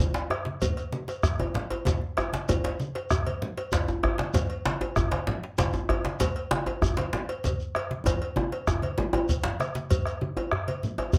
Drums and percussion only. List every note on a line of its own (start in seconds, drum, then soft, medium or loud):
0.00 shekere medium
0.14 djembe slap medium
0.14 shekere soft
0.30 bombo rim loud
0.30 cowbell soft
0.30 djembe tone medium
0.45 bombo rim soft
0.45 djembe slap medium
0.45 high conga medium
0.62 bombo low loud
0.62 cowbell medium
0.62 low conga medium
0.62 djembe bass medium
0.62 shekere medium
0.77 bombo rim soft
0.77 cowbell soft
0.77 djembe slap soft
0.77 shekere soft
0.93 bombo rim soft
0.93 high conga medium
1.08 bombo rim soft
1.08 cowbell soft
1.08 djembe slap medium
1.08 shekere soft
1.23 bombo rim loud
1.23 bombo low loud
1.23 djembe slap soft
1.23 djembe tone medium
1.23 high conga soft
1.23 djembe bass medium
1.23 shekere medium
1.40 cowbell soft
1.40 high conga medium
1.40 djembe tone medium
1.54 djembe slap medium
1.54 djembe slap soft
1.54 high conga soft
1.54 low conga medium
1.70 cowbell medium
1.70 djembe slap medium
1.70 djembe tone medium
1.85 bombo low loud
1.85 cowbell soft
1.85 djembe slap medium
1.85 high conga medium
1.85 djembe bass medium
1.85 shekere medium
2.02 high conga soft
2.17 bombo rim loud
2.17 cowbell soft
2.17 djembe tone medium
2.17 shekere soft
2.33 bombo rim soft
2.33 djembe slap medium
2.33 high conga medium
2.33 shekere soft
2.49 bombo low loud
2.49 cowbell medium
2.49 djembe tone medium
2.49 low conga medium
2.49 djembe bass medium
2.49 shekere medium
2.64 cowbell medium
2.64 djembe slap medium
2.80 high conga medium
2.80 shekere soft
2.95 cowbell soft
2.95 djembe slap medium
3.10 bombo rim loud
3.10 bombo low loud
3.10 high conga soft
3.10 djembe tone medium
3.10 djembe bass medium
3.10 shekere medium
3.27 cowbell medium
3.27 high conga medium
3.42 bombo rim soft
3.42 high conga soft
3.42 low conga medium
3.57 cowbell soft
3.57 djembe slap medium
3.72 bombo low loud
3.72 cowbell soft
3.72 djembe slap soft
3.72 djembe slap loud
3.72 djembe bass medium
3.72 shekere medium
3.88 djembe tone medium
3.88 shekere soft
4.03 bombo rim loud
4.03 cowbell soft
4.03 djembe tone medium
4.03 djembe bass medium
4.18 bombo rim soft
4.18 djembe slap medium
4.18 high conga medium
4.34 bombo low loud
4.34 cowbell medium
4.34 djembe slap medium
4.34 djembe bass medium
4.34 low conga medium
4.34 shekere medium
4.50 cowbell soft
4.66 djembe slap loud
4.66 high conga medium
4.66 shekere soft
4.81 cowbell soft
4.81 djembe slap medium
4.81 djembe tone medium
4.96 bombo rim loud
4.96 bombo low loud
4.96 high conga soft
4.96 djembe tone medium
4.96 djembe bass medium
4.96 shekere medium
5.11 cowbell soft
5.11 djembe slap medium
5.11 high conga medium
5.27 bombo rim soft
5.27 djembe slap medium
5.27 high conga soft
5.27 low conga medium
5.43 djembe slap medium
5.58 bombo low medium
5.58 cowbell soft
5.58 djembe slap soft
5.58 djembe slap loud
5.58 high conga medium
5.58 djembe bass medium
5.58 shekere medium
5.73 djembe tone medium
5.73 shekere soft
5.89 bombo rim medium
5.89 cowbell medium
5.89 djembe tone medium
5.89 djembe bass medium
6.05 bombo rim soft
6.05 djembe slap medium
6.05 high conga medium
6.20 bombo low medium
6.20 cowbell medium
6.20 djembe slap medium
6.20 low conga medium
6.20 djembe bass medium
6.20 shekere medium
6.36 cowbell medium
6.51 djembe slap loud
6.51 high conga medium
6.66 cowbell medium
6.66 djembe slap medium
6.66 djembe tone medium
6.82 bombo rim medium
6.82 bombo low loud
6.82 djembe tone medium
6.82 high conga soft
6.82 djembe bass medium
6.82 shekere medium
6.97 cowbell medium
6.97 djembe slap medium
6.97 high conga medium
7.13 bombo rim soft
7.13 djembe slap medium
7.13 high conga soft
7.13 low conga medium
7.29 cowbell medium
7.29 djembe slap medium
7.44 bombo low loud
7.44 cowbell medium
7.44 djembe slap soft
7.44 high conga medium
7.44 djembe bass medium
7.44 shekere medium
7.60 shekere soft
7.75 bombo rim loud
7.75 cowbell medium
7.75 djembe tone medium
7.90 bombo rim soft
7.90 djembe slap medium
7.90 high conga medium
8.06 bombo rim soft
8.06 bombo low medium
8.06 cowbell medium
8.06 djembe slap soft
8.06 djembe tone loud
8.06 high conga soft
8.06 djembe bass medium
8.06 low conga medium
8.06 shekere medium
8.21 cowbell medium
8.21 high conga soft
8.36 bombo rim soft
8.36 high conga medium
8.36 djembe tone loud
8.52 cowbell soft
8.52 djembe slap medium
8.67 bombo rim loud
8.67 bombo low loud
8.67 djembe slap soft
8.67 djembe tone loud
8.67 djembe tone medium
8.67 djembe bass medium
8.67 shekere medium
8.82 cowbell medium
8.82 high conga medium
8.98 high conga soft
8.98 djembe tone loud
8.98 low conga medium
9.13 cowbell soft
9.13 djembe slap medium
9.13 djembe tone loud
9.13 low conga soft
9.29 bombo rim soft
9.29 bombo low loud
9.29 cowbell soft
9.29 low conga soft
9.29 djembe bass soft
9.29 shekere medium
9.44 bombo rim soft
9.44 djembe slap loud
9.44 low conga medium
9.44 djembe bass soft
9.60 bombo rim loud
9.60 cowbell soft
9.60 djembe slap medium
9.60 high conga medium
9.60 shekere soft
9.75 bombo rim soft
9.75 djembe slap medium
9.75 high conga medium
9.75 shekere soft
9.90 bombo low loud
9.90 cowbell medium
9.90 low conga medium
9.90 djembe bass medium
9.90 shekere medium
10.06 bombo rim medium
10.06 cowbell soft
10.06 shekere soft
10.21 high conga medium
10.21 djembe tone medium
10.37 cowbell soft
10.37 djembe slap medium
10.37 djembe tone medium
10.51 bombo rim loud
10.51 high conga soft
10.51 djembe bass medium
10.67 bombo rim soft
10.67 cowbell medium
10.67 high conga medium
10.67 djembe tone medium
10.83 low conga medium
10.83 shekere soft
10.98 bombo rim medium
10.98 cowbell soft
10.98 djembe tone medium
11.13 bombo low loud
11.13 cowbell soft
11.13 djembe tone medium
11.13 high conga medium
11.13 djembe bass medium
11.13 shekere medium